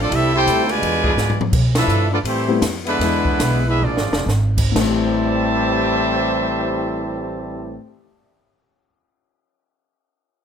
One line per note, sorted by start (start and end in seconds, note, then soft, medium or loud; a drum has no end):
0.00 0.10 A1 loud
0.00 0.10 F3 medium
0.00 0.11 F3 loud
0.00 0.10 A3 medium
0.00 0.11 C4 loud
0.00 0.12 C4 medium
0.00 0.10 D4 medium
0.00 0.12 D4 loud
0.00 0.12 F4 medium
0.00 0.11 A4 loud
0.00 0.11 A4 medium
0.00 0.12 D5 loud
0.11 0.46 C2 medium
0.11 0.33 G3 medium
0.11 0.32 C4 medium
0.11 0.31 E4 medium
0.11 0.35 A4 medium
0.11 0.35 E5 loud
0.11 kick soft
0.11 ride medium
0.15 0.35 C4 medium
0.15 0.35 G4 medium
0.33 0.66 C4 medium
0.33 0.66 E4 loud
0.33 0.68 E4 loud
0.33 0.66 G4 medium
0.33 0.67 A4 loud
0.33 0.68 C5 medium
0.33 0.68 G5 loud
0.46 0.81 D2 medium
0.46 0.63 G3 medium
0.46 0.63 C4 medium
0.46 0.63 E4 medium
0.46 0.63 A4 loud
0.46 kick soft
0.46 hi-hat pedal medium
0.46 ride medium
0.68 1.39 B2 medium
0.68 1.39 D3 medium
0.68 1.39 G#3 medium
0.68 1.40 F4 medium
0.68 1.40 B4 loud
0.68 1.40 D5 loud
0.68 1.40 G#5 loud
0.68 ride medium
0.82 1.16 E2 medium
0.82 kick soft
0.82 ride medium
1.03 1.12 F3 loud
1.03 1.12 D4 medium
1.03 1.12 E4 medium
1.03 1.12 G#4 loud
1.03 kick medium
1.17 1.51 G#2 medium
1.17 snare medium
1.17 hi-hat pedal medium
1.30 floor tom medium
1.41 floor tom medium
1.52 1.87 B2 medium
1.52 kick medium
1.52 crash medium
1.75 2.08 F3 medium
1.75 2.08 A3 medium
1.75 2.09 D4 loud
1.75 2.08 E4 medium
1.75 2.09 A4 loud
1.75 2.09 B4 medium
1.75 2.09 E5 loud
1.75 snare loud
1.75 ride medium
1.87 2.23 G2 medium
1.87 hi-hat pedal medium
2.10 2.17 F3 medium
2.10 2.17 A3 medium
2.10 2.18 B3 medium
2.10 2.17 D4 medium
2.10 2.18 F4 medium
2.10 2.18 A4 medium
2.10 2.18 D5 loud
2.23 2.60 A2 medium
2.23 2.59 E3 medium
2.23 2.59 G3 medium
2.23 2.60 A3 medium
2.23 2.58 C4 medium
2.23 2.60 E4 medium
2.23 2.60 G4 medium
2.23 2.60 C5 loud
2.23 kick soft
2.23 ride medium
2.48 2.61 G3 medium
2.48 2.61 A3 medium
2.48 2.61 B3 medium
2.48 2.61 C4 medium
2.48 2.61 E4 medium
2.61 2.99 F2 medium
2.61 kick soft
2.61 snare medium
2.61 hi-hat pedal medium
2.61 ride medium
2.85 3.62 D3 medium
2.85 3.63 G#3 medium
2.85 3.62 B3 medium
2.85 3.63 D4 medium
2.85 3.63 E4 medium
2.85 3.63 B4 loud
2.85 ride medium
2.99 3.39 E2 medium
2.99 3.62 E3 medium
2.99 3.62 G#3 medium
2.99 3.62 B3 medium
2.99 3.62 D4 medium
2.99 3.62 E4 medium
2.99 kick soft
2.99 snare soft
2.99 ride medium
3.25 kick medium
3.40 3.81 B1 medium
3.40 kick soft
3.40 snare medium
3.40 hi-hat pedal medium
3.40 ride medium
3.66 3.80 G#3 medium
3.66 3.83 B3 medium
3.66 3.83 D4 medium
3.66 3.82 E4 medium
3.66 3.83 G#4 medium
3.66 3.83 B4 medium
3.66 3.83 E5 loud
3.81 3.96 A#1 medium
3.81 4.27 F3 medium
3.81 4.27 G#3 medium
3.81 4.28 A#3 medium
3.81 4.27 D4 medium
3.81 4.29 F4 medium
3.81 4.28 G#4 medium
3.81 4.28 D5 medium
3.96 4.11 G#1 medium
3.96 snare medium
4.11 4.26 F1 medium
4.11 snare loud
4.26 4.74 G#1 medium
4.26 snare medium
4.26 hi-hat pedal medium
4.57 kick medium
4.57 crash medium
4.72 7.76 A1 medium
4.72 7.77 A2 medium
4.72 7.80 A3 medium
4.72 7.77 C4 loud
4.76 7.78 A2 loud
4.76 7.78 E3 loud
4.76 7.78 G3 loud
4.76 7.83 C4 medium
4.76 7.79 G4 medium
4.76 7.79 C5 medium
4.76 7.79 E5 medium
4.76 7.79 A5 loud
4.76 snare loud
4.76 crash medium
4.81 7.86 G4 medium
4.81 7.89 C5 medium
5.26 8.28 D5 soft
5.34 8.35 G5 soft
5.43 8.44 B5 soft
5.52 8.53 D6 soft
5.61 8.63 G6 soft
5.72 8.73 B6 soft
5.83 8.85 D7 soft